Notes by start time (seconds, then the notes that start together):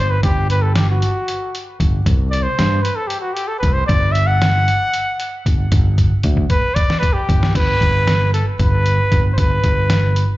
Already playing: G1
0.00 C5
0.11 B4
0.23 G1 G4, kick, closed hi-hat
0.50 B4, closed hi-hat
0.62 A4
0.76 G4, snare, closed hi-hat
0.90 F#4
1.02 closed hi-hat
1.28 closed hi-hat
1.55 closed hi-hat
1.80 G1, kick, closed hi-hat
2.06 C2, kick, closed hi-hat
2.30 D5, closed hi-hat
2.43 C5
2.59 G2, snare, closed hi-hat
2.83 B4, closed hi-hat
2.96 A4
3.07 G4, closed hi-hat
3.21 F#4
3.33 G4, closed hi-hat
3.48 A4
3.59 C2 B4, kick, closed hi-hat
3.73 C5
3.87 G1 D5, kick, closed hi-hat
4.12 E5, closed hi-hat
4.27 F#5
4.42 snare, closed hi-hat
4.68 closed hi-hat
4.94 closed hi-hat
5.20 closed hi-hat
5.46 G1, kick, closed hi-hat
5.72 G1, kick, closed hi-hat
5.98 kick, closed hi-hat
6.23 D2, kick, closed hi-hat
6.37 kick
6.50 B4, kick, closed hi-hat
6.75 D5, kick, closed hi-hat
6.90 snare
7.00 B4, kick, closed hi-hat
7.13 G4
7.29 G1, kick, closed hi-hat
7.43 snare
7.55 G1 B4, kick, closed hi-hat, crash
7.81 G1, kick, closed hi-hat
8.07 snare, closed hi-hat
8.34 A4, closed hi-hat
8.59 G1 B4, kick, closed hi-hat
8.86 closed hi-hat
9.12 G1, kick, closed hi-hat
9.33 C5
9.38 G1 B4, kick, closed hi-hat
9.64 G1, kick, closed hi-hat
9.90 snare, closed hi-hat
10.16 closed hi-hat